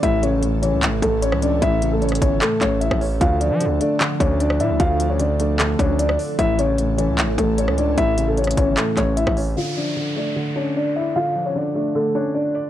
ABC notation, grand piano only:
X:1
M:4/4
L:1/16
Q:1/4=151
K:Dm
V:1 name="Grand piano"
[Ee]2 [^C^c]4 [Cc]2 z2 [A,A]2 [Cc]2 [Dd]2 | [Ee]3 [A,A] [^C^c]2 [Cc]2 [A,A]2 [Cc]2 [Ee]2 z2 | [Ff]2 [Dd]4 [Dd]2 z2 [^C^c]2 [Dd]2 [Ee]2 | [Ff]3 [^C^c] [Dd]2 [Dd]2 [A,A]2 [Cc]2 [Dd]2 z2 |
[Ee]2 [^C^c]4 [Cc]2 z2 [A,A]2 [Cc]2 [Dd]2 | [Ee]3 [A,A] [^C^c]2 [Cc]2 [A,A]2 [Cc]2 [Ee]2 z2 | [Ff]2 [Dd]4 [Dd]2 z2 [^C^c]2 [Dd]2 [Ee]2 | [Ff]3 [^C^c] [Dd]2 [Dd]2 [A,A]2 [Cc]2 [Dd]2 z2 |]